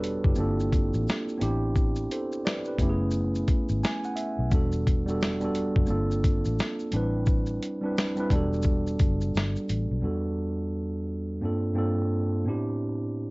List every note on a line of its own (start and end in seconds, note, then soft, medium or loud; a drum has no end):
0.00 0.21 E1 loud
0.00 0.39 G3 medium
0.00 0.40 B3 medium
0.00 0.38 D4 medium
0.00 0.40 F#4 medium
0.00 0.23 G4 soft
0.00 0.40 A4 medium
0.00 0.40 B4 medium
0.00 0.39 C#5 medium
0.00 0.39 D5 medium
0.00 closed hi-hat medium
0.00 shaker soft
0.24 0.37 F#1 medium
0.24 0.58 E4 medium
0.24 0.57 G4 medium
0.24 kick medium
0.35 0.90 G1 medium
0.35 1.23 A#3 medium
0.35 1.23 C4 medium
0.35 1.24 D4 medium
0.35 1.24 F4 medium
0.35 shaker medium
0.40 1.25 A4 medium
0.60 shaker soft
0.72 kick medium
0.72 closed hi-hat medium
0.72 shaker soft
0.93 1.06 A1 medium
0.93 shaker soft
1.07 snare loud
1.07 shaker medium
1.28 shaker soft
1.38 2.06 A1 medium
1.38 2.08 B3 medium
1.38 2.09 C4 medium
1.38 2.10 D4 medium
1.38 2.10 E4 medium
1.38 closed hi-hat medium
1.38 shaker medium
1.38 shaker soft
1.43 2.11 G4 loud
1.75 kick loud
1.75 shaker medium
1.96 shaker soft
2.11 2.44 A4 medium
2.11 2.44 C5 medium
2.11 closed hi-hat medium
2.11 shaker soft
2.32 shaker soft
2.45 2.65 B4 medium
2.45 2.65 D5 medium
2.45 snare loud
2.45 shaker medium
2.47 shaker medium
2.65 2.82 G4 soft
2.65 2.99 B4 medium
2.65 shaker soft
2.78 3.44 F#1 loud
2.78 3.91 A3 medium
2.78 3.91 B3 medium
2.78 3.92 C#4 medium
2.78 3.92 E4 medium
2.78 kick medium
2.78 closed hi-hat medium
2.78 shaker soft
2.83 2.89 G4 medium
2.90 3.96 G#4 loud
3.11 shaker medium
3.13 shaker medium
3.35 shaker soft
3.48 kick medium
3.48 closed hi-hat medium
3.48 shaker soft
3.69 3.82 G#1 medium
3.69 shaker soft
3.84 4.03 G#5 medium
3.84 snare loud
3.84 shaker medium
4.04 4.17 F#5 medium
4.04 shaker soft
4.16 4.49 E5 medium
4.16 closed hi-hat medium
4.16 shaker soft
4.39 4.51 B1 medium
4.50 5.72 E1 loud
4.50 4.89 G3 medium
4.50 4.90 B3 medium
4.50 4.90 D4 medium
4.50 4.91 F#4 medium
4.50 kick loud
4.50 shaker medium
4.55 4.91 A4 medium
4.72 shaker soft
4.87 kick medium
4.87 closed hi-hat medium
4.87 shaker soft
5.06 5.29 G3 medium
5.06 5.30 B3 medium
5.06 5.31 D4 medium
5.06 5.31 F#4 medium
5.06 shaker soft
5.10 5.32 A4 medium
5.21 snare loud
5.21 shaker medium
5.23 shaker medium
5.40 5.89 G3 medium
5.40 5.89 B3 medium
5.40 5.87 D4 medium
5.40 5.91 F#4 medium
5.40 shaker soft
5.45 5.89 A4 medium
5.55 closed hi-hat medium
5.55 shaker soft
5.76 5.89 F#1 medium
5.76 kick medium
5.86 6.74 A#3 medium
5.86 6.74 C4 medium
5.86 6.75 D4 medium
5.86 shaker medium
5.88 6.42 G1 loud
5.88 6.76 F4 medium
5.88 6.76 A4 medium
5.88 shaker medium
6.11 shaker soft
6.24 kick medium
6.24 closed hi-hat medium
6.24 shaker soft
6.45 6.58 A1 medium
6.45 shaker soft
6.59 snare loud
6.59 shaker medium
6.79 shaker soft
6.92 7.58 A1 medium
6.92 7.61 G3 medium
6.92 7.62 C4 medium
6.92 closed hi-hat medium
6.92 shaker soft
6.93 7.62 D4 medium
6.93 7.63 E4 medium
6.93 7.64 B4 medium
6.93 shaker medium
7.26 kick loud
7.26 shaker medium
7.46 shaker soft
7.62 closed hi-hat medium
7.62 shaker soft
7.81 8.05 G3 medium
7.81 8.05 C4 medium
7.81 8.06 D4 medium
7.81 8.06 E4 medium
7.85 8.07 B4 medium
7.97 snare loud
7.97 shaker medium
7.98 shaker medium
8.16 8.29 G3 medium
8.16 8.30 C4 medium
8.16 8.31 D4 medium
8.16 8.32 E4 medium
8.16 shaker soft
8.20 8.32 B4 medium
8.30 8.96 E1 medium
8.30 9.43 G3 medium
8.30 9.43 B3 medium
8.30 9.44 D4 medium
8.30 9.44 F#4 medium
8.30 kick medium
8.30 closed hi-hat medium
8.30 shaker soft
8.35 9.45 A4 loud
8.53 shaker soft
8.62 shaker medium
8.64 kick medium
8.64 shaker medium
8.87 shaker soft
8.99 9.33 F#1 medium
8.99 kick medium
8.99 closed hi-hat medium
8.99 shaker soft
9.21 shaker soft
9.35 9.55 G1 medium
9.35 shaker medium
9.36 snare loud
9.36 shaker medium
9.56 shaker soft
9.68 9.89 A1 medium
9.68 closed hi-hat medium
9.68 shaker soft
9.91 10.03 B1 medium
10.00 11.02 E2 medium
10.00 11.03 G3 medium
10.00 11.03 B3 medium
10.00 11.04 D4 medium
10.00 11.04 F#4 medium
10.05 11.05 A4 medium
11.41 11.70 G2 medium
11.41 11.71 A#3 medium
11.41 11.71 C4 medium
11.41 11.72 D4 medium
11.41 11.72 F4 medium
11.45 11.72 A4 medium
11.74 12.28 G2 medium
11.74 12.29 A#3 medium
11.74 12.29 C4 medium
11.74 12.30 D4 medium
11.74 12.30 F4 medium
11.78 12.30 A4 medium
12.45 13.30 A2 medium
12.45 13.30 B3 medium
12.45 13.30 C4 medium
12.45 13.30 D4 medium
12.45 13.30 E4 medium
12.49 13.30 G4 medium